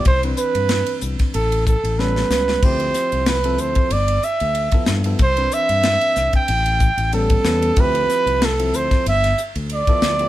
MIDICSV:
0, 0, Header, 1, 6, 480
1, 0, Start_track
1, 0, Tempo, 642398
1, 48, Time_signature, 4, 2, 24, 8
1, 7686, End_track
2, 0, Start_track
2, 0, Title_t, "Trumpet"
2, 0, Program_c, 0, 56
2, 55, Note_on_c, 0, 72, 95
2, 161, Note_off_c, 0, 72, 0
2, 282, Note_on_c, 0, 71, 81
2, 777, Note_off_c, 0, 71, 0
2, 1005, Note_on_c, 0, 69, 79
2, 1229, Note_off_c, 0, 69, 0
2, 1246, Note_on_c, 0, 69, 75
2, 1487, Note_on_c, 0, 71, 72
2, 1498, Note_off_c, 0, 69, 0
2, 1971, Note_on_c, 0, 72, 92
2, 1982, Note_off_c, 0, 71, 0
2, 2454, Note_on_c, 0, 71, 73
2, 2465, Note_off_c, 0, 72, 0
2, 2691, Note_on_c, 0, 72, 75
2, 2702, Note_off_c, 0, 71, 0
2, 2930, Note_on_c, 0, 74, 79
2, 2941, Note_off_c, 0, 72, 0
2, 3169, Note_on_c, 0, 76, 80
2, 3180, Note_off_c, 0, 74, 0
2, 3648, Note_off_c, 0, 76, 0
2, 3903, Note_on_c, 0, 72, 99
2, 4135, Note_on_c, 0, 76, 104
2, 4146, Note_off_c, 0, 72, 0
2, 4742, Note_off_c, 0, 76, 0
2, 4749, Note_on_c, 0, 79, 89
2, 5303, Note_off_c, 0, 79, 0
2, 5336, Note_on_c, 0, 69, 83
2, 5831, Note_on_c, 0, 71, 103
2, 5842, Note_off_c, 0, 69, 0
2, 6312, Note_on_c, 0, 69, 81
2, 6323, Note_off_c, 0, 71, 0
2, 6542, Note_on_c, 0, 72, 85
2, 6553, Note_off_c, 0, 69, 0
2, 6775, Note_off_c, 0, 72, 0
2, 6787, Note_on_c, 0, 76, 86
2, 7042, Note_off_c, 0, 76, 0
2, 7273, Note_on_c, 0, 74, 83
2, 7686, Note_off_c, 0, 74, 0
2, 7686, End_track
3, 0, Start_track
3, 0, Title_t, "Tine electric piano"
3, 0, Program_c, 1, 4
3, 179, Note_on_c, 1, 52, 59
3, 180, Note_on_c, 1, 60, 56
3, 184, Note_on_c, 1, 62, 50
3, 184, Note_on_c, 1, 71, 66
3, 999, Note_off_c, 1, 52, 0
3, 1000, Note_off_c, 1, 60, 0
3, 1001, Note_off_c, 1, 62, 0
3, 1002, Note_off_c, 1, 71, 0
3, 1488, Note_on_c, 1, 55, 69
3, 1489, Note_on_c, 1, 61, 62
3, 1493, Note_on_c, 1, 59, 61
3, 1494, Note_on_c, 1, 69, 71
3, 1698, Note_off_c, 1, 55, 0
3, 1699, Note_off_c, 1, 61, 0
3, 1701, Note_off_c, 1, 59, 0
3, 1701, Note_off_c, 1, 69, 0
3, 1727, Note_on_c, 1, 55, 56
3, 1730, Note_on_c, 1, 59, 53
3, 1730, Note_on_c, 1, 61, 48
3, 1731, Note_on_c, 1, 71, 61
3, 1938, Note_off_c, 1, 55, 0
3, 1939, Note_off_c, 1, 59, 0
3, 1939, Note_off_c, 1, 61, 0
3, 1940, Note_off_c, 1, 71, 0
3, 1974, Note_on_c, 1, 53, 67
3, 1977, Note_on_c, 1, 60, 64
3, 1978, Note_on_c, 1, 64, 60
3, 1981, Note_on_c, 1, 67, 82
3, 2493, Note_off_c, 1, 53, 0
3, 2494, Note_off_c, 1, 60, 0
3, 2495, Note_off_c, 1, 64, 0
3, 2497, Note_off_c, 1, 67, 0
3, 2572, Note_on_c, 1, 53, 69
3, 2575, Note_on_c, 1, 60, 68
3, 2579, Note_on_c, 1, 64, 57
3, 2579, Note_on_c, 1, 69, 74
3, 2924, Note_off_c, 1, 53, 0
3, 2926, Note_off_c, 1, 60, 0
3, 2928, Note_off_c, 1, 64, 0
3, 2928, Note_off_c, 1, 69, 0
3, 3539, Note_on_c, 1, 53, 64
3, 3540, Note_on_c, 1, 59, 60
3, 3544, Note_on_c, 1, 64, 65
3, 3544, Note_on_c, 1, 69, 71
3, 3743, Note_off_c, 1, 53, 0
3, 3744, Note_off_c, 1, 59, 0
3, 3745, Note_off_c, 1, 64, 0
3, 3746, Note_off_c, 1, 69, 0
3, 3771, Note_on_c, 1, 53, 56
3, 3776, Note_on_c, 1, 59, 56
3, 3779, Note_on_c, 1, 64, 54
3, 3780, Note_on_c, 1, 69, 64
3, 3884, Note_off_c, 1, 53, 0
3, 3887, Note_off_c, 1, 59, 0
3, 3888, Note_off_c, 1, 64, 0
3, 3888, Note_off_c, 1, 69, 0
3, 4010, Note_on_c, 1, 52, 56
3, 4014, Note_on_c, 1, 60, 49
3, 4014, Note_on_c, 1, 62, 55
3, 4015, Note_on_c, 1, 71, 64
3, 4835, Note_off_c, 1, 52, 0
3, 4837, Note_off_c, 1, 60, 0
3, 4837, Note_off_c, 1, 62, 0
3, 4837, Note_off_c, 1, 71, 0
3, 5328, Note_on_c, 1, 59, 59
3, 5328, Note_on_c, 1, 61, 59
3, 5329, Note_on_c, 1, 55, 73
3, 5335, Note_on_c, 1, 69, 75
3, 5538, Note_off_c, 1, 59, 0
3, 5538, Note_off_c, 1, 61, 0
3, 5539, Note_off_c, 1, 55, 0
3, 5542, Note_off_c, 1, 69, 0
3, 5567, Note_on_c, 1, 55, 58
3, 5569, Note_on_c, 1, 59, 52
3, 5569, Note_on_c, 1, 71, 63
3, 5572, Note_on_c, 1, 61, 56
3, 5778, Note_off_c, 1, 55, 0
3, 5779, Note_off_c, 1, 59, 0
3, 5779, Note_off_c, 1, 71, 0
3, 5781, Note_off_c, 1, 61, 0
3, 5810, Note_on_c, 1, 60, 62
3, 5811, Note_on_c, 1, 53, 76
3, 5812, Note_on_c, 1, 67, 77
3, 5815, Note_on_c, 1, 64, 67
3, 6332, Note_off_c, 1, 53, 0
3, 6332, Note_off_c, 1, 60, 0
3, 6333, Note_off_c, 1, 67, 0
3, 6334, Note_off_c, 1, 64, 0
3, 6418, Note_on_c, 1, 60, 68
3, 6421, Note_on_c, 1, 53, 71
3, 6421, Note_on_c, 1, 64, 62
3, 6426, Note_on_c, 1, 69, 72
3, 6769, Note_off_c, 1, 60, 0
3, 6770, Note_off_c, 1, 53, 0
3, 6770, Note_off_c, 1, 64, 0
3, 6772, Note_off_c, 1, 69, 0
3, 7383, Note_on_c, 1, 53, 72
3, 7389, Note_on_c, 1, 59, 60
3, 7389, Note_on_c, 1, 64, 64
3, 7392, Note_on_c, 1, 69, 73
3, 7586, Note_off_c, 1, 53, 0
3, 7590, Note_off_c, 1, 59, 0
3, 7590, Note_off_c, 1, 64, 0
3, 7591, Note_off_c, 1, 69, 0
3, 7624, Note_on_c, 1, 53, 57
3, 7626, Note_on_c, 1, 64, 52
3, 7627, Note_on_c, 1, 67, 60
3, 7629, Note_on_c, 1, 59, 52
3, 7686, Note_off_c, 1, 53, 0
3, 7686, Note_off_c, 1, 59, 0
3, 7686, Note_off_c, 1, 64, 0
3, 7686, Note_off_c, 1, 67, 0
3, 7686, End_track
4, 0, Start_track
4, 0, Title_t, "Fingered electric bass"
4, 0, Program_c, 2, 33
4, 43, Note_on_c, 2, 36, 82
4, 239, Note_off_c, 2, 36, 0
4, 409, Note_on_c, 2, 43, 66
4, 607, Note_off_c, 2, 43, 0
4, 763, Note_on_c, 2, 36, 69
4, 871, Note_off_c, 2, 36, 0
4, 1006, Note_on_c, 2, 33, 97
4, 1306, Note_off_c, 2, 33, 0
4, 1371, Note_on_c, 2, 33, 77
4, 1657, Note_off_c, 2, 33, 0
4, 1720, Note_on_c, 2, 37, 69
4, 1917, Note_off_c, 2, 37, 0
4, 1962, Note_on_c, 2, 38, 84
4, 2158, Note_off_c, 2, 38, 0
4, 2334, Note_on_c, 2, 36, 67
4, 2684, Note_off_c, 2, 36, 0
4, 2684, Note_on_c, 2, 38, 70
4, 2791, Note_off_c, 2, 38, 0
4, 2918, Note_on_c, 2, 31, 83
4, 3116, Note_off_c, 2, 31, 0
4, 3296, Note_on_c, 2, 38, 75
4, 3491, Note_off_c, 2, 38, 0
4, 3642, Note_on_c, 2, 43, 80
4, 3838, Note_off_c, 2, 43, 0
4, 3882, Note_on_c, 2, 36, 82
4, 4078, Note_off_c, 2, 36, 0
4, 4253, Note_on_c, 2, 43, 68
4, 4449, Note_off_c, 2, 43, 0
4, 4606, Note_on_c, 2, 36, 65
4, 4713, Note_off_c, 2, 36, 0
4, 4846, Note_on_c, 2, 33, 101
4, 5147, Note_off_c, 2, 33, 0
4, 5211, Note_on_c, 2, 33, 74
4, 5497, Note_off_c, 2, 33, 0
4, 5563, Note_on_c, 2, 40, 74
4, 5759, Note_off_c, 2, 40, 0
4, 5805, Note_on_c, 2, 38, 88
4, 6001, Note_off_c, 2, 38, 0
4, 6173, Note_on_c, 2, 36, 63
4, 6527, Note_off_c, 2, 36, 0
4, 6527, Note_on_c, 2, 38, 77
4, 6633, Note_off_c, 2, 38, 0
4, 6772, Note_on_c, 2, 31, 93
4, 6966, Note_off_c, 2, 31, 0
4, 7141, Note_on_c, 2, 38, 89
4, 7335, Note_off_c, 2, 38, 0
4, 7487, Note_on_c, 2, 38, 73
4, 7683, Note_off_c, 2, 38, 0
4, 7686, End_track
5, 0, Start_track
5, 0, Title_t, "Muted fingered electric bass strokes"
5, 2805, Note_on_c, 9, 29, 30
5, 2880, Note_off_c, 9, 29, 0
5, 6657, Note_on_c, 9, 29, 31
5, 6732, Note_off_c, 9, 29, 0
5, 7686, End_track
6, 0, Start_track
6, 0, Title_t, "Drums"
6, 38, Note_on_c, 9, 51, 70
6, 44, Note_on_c, 9, 36, 95
6, 113, Note_off_c, 9, 51, 0
6, 119, Note_off_c, 9, 36, 0
6, 172, Note_on_c, 9, 51, 47
6, 247, Note_off_c, 9, 51, 0
6, 276, Note_on_c, 9, 44, 77
6, 351, Note_off_c, 9, 44, 0
6, 410, Note_on_c, 9, 51, 59
6, 485, Note_off_c, 9, 51, 0
6, 515, Note_on_c, 9, 51, 78
6, 517, Note_on_c, 9, 38, 101
6, 590, Note_off_c, 9, 51, 0
6, 592, Note_off_c, 9, 38, 0
6, 646, Note_on_c, 9, 51, 56
6, 721, Note_off_c, 9, 51, 0
6, 757, Note_on_c, 9, 44, 71
6, 831, Note_off_c, 9, 44, 0
6, 892, Note_on_c, 9, 51, 54
6, 893, Note_on_c, 9, 38, 27
6, 895, Note_on_c, 9, 36, 69
6, 966, Note_off_c, 9, 51, 0
6, 968, Note_off_c, 9, 38, 0
6, 970, Note_off_c, 9, 36, 0
6, 1002, Note_on_c, 9, 51, 72
6, 1076, Note_off_c, 9, 51, 0
6, 1136, Note_on_c, 9, 51, 56
6, 1211, Note_off_c, 9, 51, 0
6, 1245, Note_on_c, 9, 44, 76
6, 1246, Note_on_c, 9, 36, 69
6, 1320, Note_off_c, 9, 36, 0
6, 1320, Note_off_c, 9, 44, 0
6, 1379, Note_on_c, 9, 51, 51
6, 1454, Note_off_c, 9, 51, 0
6, 1489, Note_on_c, 9, 38, 44
6, 1564, Note_off_c, 9, 38, 0
6, 1617, Note_on_c, 9, 38, 60
6, 1692, Note_off_c, 9, 38, 0
6, 1722, Note_on_c, 9, 44, 79
6, 1723, Note_on_c, 9, 38, 74
6, 1796, Note_off_c, 9, 44, 0
6, 1798, Note_off_c, 9, 38, 0
6, 1854, Note_on_c, 9, 38, 62
6, 1928, Note_off_c, 9, 38, 0
6, 1962, Note_on_c, 9, 51, 70
6, 1962, Note_on_c, 9, 55, 68
6, 1963, Note_on_c, 9, 36, 93
6, 2036, Note_off_c, 9, 51, 0
6, 2036, Note_off_c, 9, 55, 0
6, 2038, Note_off_c, 9, 36, 0
6, 2089, Note_on_c, 9, 51, 44
6, 2164, Note_off_c, 9, 51, 0
6, 2198, Note_on_c, 9, 44, 75
6, 2200, Note_on_c, 9, 38, 29
6, 2273, Note_off_c, 9, 44, 0
6, 2274, Note_off_c, 9, 38, 0
6, 2332, Note_on_c, 9, 51, 49
6, 2406, Note_off_c, 9, 51, 0
6, 2438, Note_on_c, 9, 51, 73
6, 2439, Note_on_c, 9, 38, 107
6, 2513, Note_off_c, 9, 51, 0
6, 2514, Note_off_c, 9, 38, 0
6, 2569, Note_on_c, 9, 51, 53
6, 2644, Note_off_c, 9, 51, 0
6, 2677, Note_on_c, 9, 44, 75
6, 2752, Note_off_c, 9, 44, 0
6, 2803, Note_on_c, 9, 51, 48
6, 2810, Note_on_c, 9, 36, 72
6, 2878, Note_off_c, 9, 51, 0
6, 2885, Note_off_c, 9, 36, 0
6, 2918, Note_on_c, 9, 51, 70
6, 2993, Note_off_c, 9, 51, 0
6, 3048, Note_on_c, 9, 51, 54
6, 3123, Note_off_c, 9, 51, 0
6, 3158, Note_on_c, 9, 44, 72
6, 3233, Note_off_c, 9, 44, 0
6, 3289, Note_on_c, 9, 51, 49
6, 3364, Note_off_c, 9, 51, 0
6, 3398, Note_on_c, 9, 51, 63
6, 3473, Note_off_c, 9, 51, 0
6, 3523, Note_on_c, 9, 51, 55
6, 3530, Note_on_c, 9, 36, 79
6, 3598, Note_off_c, 9, 51, 0
6, 3604, Note_off_c, 9, 36, 0
6, 3633, Note_on_c, 9, 44, 70
6, 3635, Note_on_c, 9, 38, 95
6, 3708, Note_off_c, 9, 44, 0
6, 3709, Note_off_c, 9, 38, 0
6, 3766, Note_on_c, 9, 51, 52
6, 3841, Note_off_c, 9, 51, 0
6, 3878, Note_on_c, 9, 51, 72
6, 3881, Note_on_c, 9, 36, 91
6, 3952, Note_off_c, 9, 51, 0
6, 3956, Note_off_c, 9, 36, 0
6, 4010, Note_on_c, 9, 51, 52
6, 4085, Note_off_c, 9, 51, 0
6, 4121, Note_on_c, 9, 44, 77
6, 4196, Note_off_c, 9, 44, 0
6, 4251, Note_on_c, 9, 51, 61
6, 4326, Note_off_c, 9, 51, 0
6, 4359, Note_on_c, 9, 51, 81
6, 4361, Note_on_c, 9, 38, 104
6, 4434, Note_off_c, 9, 51, 0
6, 4436, Note_off_c, 9, 38, 0
6, 4493, Note_on_c, 9, 51, 52
6, 4568, Note_off_c, 9, 51, 0
6, 4602, Note_on_c, 9, 44, 75
6, 4603, Note_on_c, 9, 38, 28
6, 4677, Note_off_c, 9, 44, 0
6, 4678, Note_off_c, 9, 38, 0
6, 4730, Note_on_c, 9, 51, 54
6, 4733, Note_on_c, 9, 36, 71
6, 4804, Note_off_c, 9, 51, 0
6, 4808, Note_off_c, 9, 36, 0
6, 4842, Note_on_c, 9, 51, 79
6, 4917, Note_off_c, 9, 51, 0
6, 4974, Note_on_c, 9, 51, 61
6, 5049, Note_off_c, 9, 51, 0
6, 5081, Note_on_c, 9, 44, 80
6, 5084, Note_on_c, 9, 36, 76
6, 5156, Note_off_c, 9, 44, 0
6, 5159, Note_off_c, 9, 36, 0
6, 5214, Note_on_c, 9, 51, 54
6, 5289, Note_off_c, 9, 51, 0
6, 5325, Note_on_c, 9, 51, 63
6, 5399, Note_off_c, 9, 51, 0
6, 5452, Note_on_c, 9, 51, 64
6, 5455, Note_on_c, 9, 36, 80
6, 5527, Note_off_c, 9, 51, 0
6, 5530, Note_off_c, 9, 36, 0
6, 5562, Note_on_c, 9, 44, 75
6, 5563, Note_on_c, 9, 38, 97
6, 5637, Note_off_c, 9, 44, 0
6, 5638, Note_off_c, 9, 38, 0
6, 5696, Note_on_c, 9, 51, 54
6, 5771, Note_off_c, 9, 51, 0
6, 5802, Note_on_c, 9, 51, 73
6, 5805, Note_on_c, 9, 36, 98
6, 5876, Note_off_c, 9, 51, 0
6, 5880, Note_off_c, 9, 36, 0
6, 5939, Note_on_c, 9, 51, 49
6, 6013, Note_off_c, 9, 51, 0
6, 6049, Note_on_c, 9, 44, 81
6, 6051, Note_on_c, 9, 38, 29
6, 6124, Note_off_c, 9, 44, 0
6, 6126, Note_off_c, 9, 38, 0
6, 6180, Note_on_c, 9, 51, 56
6, 6255, Note_off_c, 9, 51, 0
6, 6289, Note_on_c, 9, 51, 81
6, 6291, Note_on_c, 9, 38, 109
6, 6364, Note_off_c, 9, 51, 0
6, 6365, Note_off_c, 9, 38, 0
6, 6422, Note_on_c, 9, 51, 54
6, 6496, Note_off_c, 9, 51, 0
6, 6528, Note_on_c, 9, 44, 70
6, 6603, Note_off_c, 9, 44, 0
6, 6659, Note_on_c, 9, 36, 73
6, 6660, Note_on_c, 9, 51, 54
6, 6661, Note_on_c, 9, 38, 27
6, 6734, Note_off_c, 9, 36, 0
6, 6735, Note_off_c, 9, 51, 0
6, 6736, Note_off_c, 9, 38, 0
6, 6772, Note_on_c, 9, 51, 73
6, 6847, Note_off_c, 9, 51, 0
6, 6903, Note_on_c, 9, 51, 52
6, 6905, Note_on_c, 9, 38, 26
6, 6978, Note_off_c, 9, 51, 0
6, 6979, Note_off_c, 9, 38, 0
6, 7010, Note_on_c, 9, 44, 73
6, 7085, Note_off_c, 9, 44, 0
6, 7139, Note_on_c, 9, 51, 47
6, 7214, Note_off_c, 9, 51, 0
6, 7245, Note_on_c, 9, 51, 59
6, 7320, Note_off_c, 9, 51, 0
6, 7377, Note_on_c, 9, 51, 58
6, 7378, Note_on_c, 9, 36, 78
6, 7452, Note_off_c, 9, 51, 0
6, 7453, Note_off_c, 9, 36, 0
6, 7487, Note_on_c, 9, 44, 74
6, 7488, Note_on_c, 9, 38, 96
6, 7561, Note_off_c, 9, 44, 0
6, 7563, Note_off_c, 9, 38, 0
6, 7615, Note_on_c, 9, 51, 46
6, 7686, Note_off_c, 9, 51, 0
6, 7686, End_track
0, 0, End_of_file